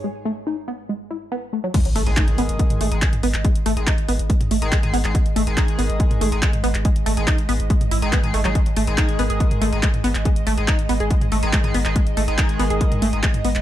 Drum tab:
CC |----------------|x---------------|----------------|----------------|
HH |----------------|xxoxxxoxxxoxxxox|xxoxxxoxxxoxxxox|xxoxxxoxxxoxxxox|
CP |----------------|----x-------x--x|----x-------x--x|----x-------x--x|
T2 |----------------|---------o---o--|---------o---o--|---------o---o--|
BD |----------------|o---o---o---o---|o---o---o---o---|o---o---o---o---|

CC |----------------|----------------|----------------|----------------|
HH |xxoxxxoxxxoxxxox|xxoxxxoxxxoxxxox|xxoxxxoxxxoxxxox|xxoxxxoxxxoxxxox|
CP |----x-------x--x|----x-------x--x|----x-------x--x|----x-------x--x|
T2 |---------o---o--|---------o---o--|---------o---o--|---------o---o--|
BD |o---o---o---o---|o---o---o---o---|o---o---o---o---|o---o---o---o---|